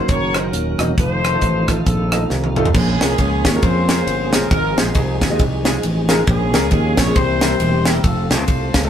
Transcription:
Already playing: D#3 F#3 A#3 C#4 F#4
0.08 F#1 A#4 C#5, kick, closed hi-hat
0.34 A#3 C#4 D#4 F#4 A#4 C5, cross-stick, closed hi-hat
0.53 D#1, closed hi-hat
0.78 E1 A#3 D#4 F#4 D#5, cross-stick, closed hi-hat
0.98 F1 F3 A3 C4 D#4 F4 A4 C5, kick, closed hi-hat
1.23 F4 C5, cross-stick, closed hi-hat
1.32 A3 D#4 F4 C5
1.41 A1, kick, closed hi-hat
1.68 A3 D#4 F4 A4 C5, kick, cross-stick, closed hi-hat
1.86 A#1 C4 D#4 A4, kick, closed hi-hat
2.12 A3 D#4 F4 D#5, cross-stick, closed hi-hat
2.30 C2, snare
2.44 high tom
2.56 A3 D#4 F4 A4, mid tom
2.65 floor tom
2.73 A#1 A#2 F3 G#3 A#3 C#4 F4 G#4, kick, crash
3.00 C2 G#3 C#4 F4 A#4, snare, ride
3.18 C#2, kick, ride
3.44 D#2 F4 C#5, kick, snare, ride
3.54 G#3 C#4 F4 A#4
3.62 F2 F4 G#4 C5, kick, ride
3.89 G#3 C#4 F4 A#4, snare, ride
4.07 G1, ride
4.33 G#3 C#4 F4 A#4 C5, snare, ride
4.51 G#1 G#2 F3 C4 D#4 F4 A#4, kick, ride
4.76 A#1 G#3 C4 D#4 F4 G#4 C5, snare, ride
4.95 C2, kick, ride
5.21 D#2 F4 C5, kick, snare, ride
5.30 G#3 D#4 F4 D#5
5.39 C2, kick, ride
5.64 G#3 D#4 F4 G#4, snare, ride
5.83 A1, ride
6.09 G#3 D#4 F4 A#4, snare, ride
6.27 A#1 A#2 F3 A#3 C#4 F4 G#4, kick, ride
6.53 C#2 G#3 C#4 F4 A#4, snare, ride
6.71 D#2, kick, ride
6.96 A#1 F4 C#5, kick, snare, ride
7.07 G#3 C#4 F4 G#4
7.14 C2 C3 E3 G3 C4 E4 G4 C5, kick, ride
7.41 G3 C4 E4 A#4, snare, ride
7.60 E1, ride
7.84 G3 C4 E4 G4 A#4, snare, ride
8.02 F1 A3 C4 F4 A4, kick, ride
8.29 C#2 A3 C4 F4 A4 C5, snare, ride
8.48 C2, kick, ride
8.74 C#2 F4 C5, kick, snare, ride
8.84 A3 C4 F4 A4

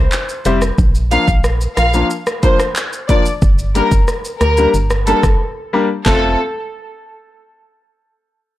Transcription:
0.12 clap, shaker
0.29 shaker
0.45 F1 G3 C4 E4 G4 C5, closed hi-hat, shaker
0.62 cross-stick, shaker
0.78 A#1, kick, shaker
0.95 shaker
1.11 F3 A#3 D4 F4 A#4 F5, closed hi-hat, shaker
1.28 A#1, kick, shaker
1.44 cross-stick, shaker
1.61 shaker
1.77 A#1 F4 A#4 F5, cross-stick, closed hi-hat, shaker
1.94 F3 A#3 D4 F4 A#4, shaker
2.10 shaker
2.27 cross-stick, shaker
2.43 F3 A#3 D4 F4 A#4 C5, kick, closed hi-hat, shaker
2.60 cross-stick, shaker
2.76 clap, shaker
2.93 shaker
3.09 F3 A#3 D4 F4 A#4 D5, kick, closed hi-hat, shaker
3.26 shaker
3.42 G1, kick, shaker
3.59 shaker
3.75 G3 A#3 D4 G4 A#4, closed hi-hat, shaker
3.92 G1, kick, shaker
4.08 cross-stick, shaker
4.25 shaker
4.41 D2 G4 A#4, cross-stick, closed hi-hat, shaker
4.57 G3 A#3 D4 G4 A#4, shaker
4.74 G1, shaker
4.90 cross-stick, shaker
5.07 G3 A#3 D4 G4 A4 A#4, closed hi-hat, shaker
5.23 G1, kick, cross-stick, shaker
5.73 G3 A#3 D4 G4 A#4
6.06 F1 A3 C4 F4 A4, kick, snare, clap

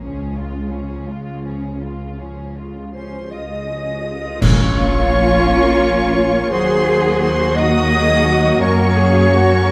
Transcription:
0.01 C#2 C#3 F3 C#4 G#4
0.37 G#3 F4
0.71 F3 C#4 G#4
1.07 C#2 C#3 G#3 F4
1.43 F3 C#4 G#4
1.81 G#3 F4
2.17 C#2 C#3 F3 C#4 G#4
2.56 G#3 F4
2.94 F3 C#4 G#4 C5 C6
3.31 C#2 C#3 G#3 F4 D#5 D#6
3.68 F3 C#4 G#4
4.06 G#3 F4
4.41 A#1 A#2 A#3 C#4 F4 C#5 C#6, concert bass drum, crash
6.52 D#2 F#3 A#3 F#4 G#4 C5 C6
7.21 C5 C6
7.55 F#4 D#5 D#6
7.91 G#4
8.26 F#4
8.60 F#2 A#3 C#4 A#4 C#5 C#6
8.96 G#4
9.30 F#4
9.64 A#4

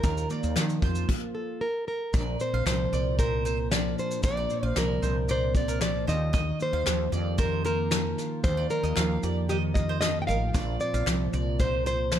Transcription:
Already playing: F3 A#3 F4 G4 A#4
0.03 D#2 D#3 A#4, kick, shaker
0.17 shaker
0.30 A#3 D5, shaker
0.43 D#2, shaker
0.56 D#3 F3, snare, clap, shaker
0.69 shaker
0.82 F2 F4 C5, kick
0.95 shaker
1.09 kick, crash
1.35 A4
1.61 A#4
1.88 A#4
2.14 A#1 A#2 D5, kick, shaker
2.40 C4 C5, shaker
2.53 A#1 F5
2.66 C2 F3 C5, snare, clap, shaker
2.92 C2 A#4 D5, shaker
3.19 A#2 A#4 C5, kick, shaker
3.45 C4 C5, shaker
3.71 F3 D5, snare, clap, shaker
3.96 D4 C5, shaker
4.11 shaker
4.22 A#1 A#2 D5, kick, shaker
4.37 D5
4.49 C4, shaker
4.63 A#1 F5
4.68 C5
4.75 C2 F3 A#4 D5, snare, clap, shaker
5.02 C2 A#4 C5, shaker
5.27 A#2 C5 D5, shaker
5.54 C4 D5, kick, shaker
5.68 A#4, shaker
5.80 F3 D5, snare, clap, shaker
6.07 D#2 D#3 C5 D#5, snare, shaker
6.33 D#3 D#5, kick, shaker
6.59 A#3 C5, shaker
6.73 D#2 F5
6.86 D#2 F3, snare, clap, shaker
7.12 F2 G4 D5, shaker
7.38 D#3 A#4 C5, kick, shaker
7.65 A#3 A#4 C5, shaker
7.91 F3, snare, clap, shaker
8.18 F4, snare, shaker
8.44 D#2 D#3 C5, kick, shaker
8.57 D5
8.70 A#3 A#4, shaker
8.83 D#2 D#5, shaker
8.96 D#2 F3 F5, snare, clap, shaker
9.23 F2 G4 D5, shaker
9.49 D#3 G4 D#5, shaker
9.74 A#3 D#5, kick, shaker
9.89 C5
10.01 F3 D#5, snare, clap, shaker
10.22 G5
10.27 A1 F4 A#4 F5, shaker
10.53 A#1 A#2 D5, kick, shaker
10.80 C4 D5, shaker
10.94 A#1 F5, shaker
11.07 C2 F3, snare, clap, shaker
11.33 C2 A#4 D5, shaker
11.59 A#2 C5, kick, shaker
11.86 C4 C5, shaker
12.12 F3, snare, clap, shaker

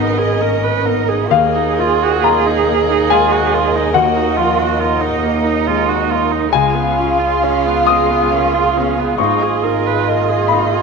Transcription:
Already playing: G#1 G#2 B3 C#4 D#4 G#4 A#4 D#5 F#5
0.18 G#4
0.40 A#3 C#4 A#4
0.63 B4
0.85 B3 D#4 A#4
1.08 G#4
1.28 D#2 A#3 G#4 A#4 D#5 F5
1.32 A#3
1.55 D#4
1.78 F4
2.03 F#4
2.24 F4 A#4 A#5
2.46 D#4
2.67 A#3
2.90 D#4
3.10 G#3 F4 G#5
3.32 F#4
3.53 A#3 F4
3.75 D#4
3.94 D#2 A#3 F#4 F#5
4.16 D#4
4.37 F3 F4
4.57 F#4
4.79 D#4 F4 A#4
5.00 D#4
5.23 A#3
5.44 D#4
5.67 G#3 F4
5.89 F#4
6.10 A#3 F4
6.31 D#4
6.51 C#2 G#3 C#4 F4 G#4 F5 G#5
6.74 B3
6.98 C#4 F4
7.19 F4
7.43 C#4 C#5
7.66 B3
7.87 G#3 B3 D#6
8.10 B3
8.31 A#3 C#4
8.54 F4
8.77 B3 C#4
8.98 B3
9.17 G#1 G#2 A#3 D#4 F4 D#5 C#6
9.42 G#4
9.63 D#4 A#4
9.86 B4
10.05 A#4 D#5
10.29 G#4
10.48 A#3 D#4 B5
10.72 G#4

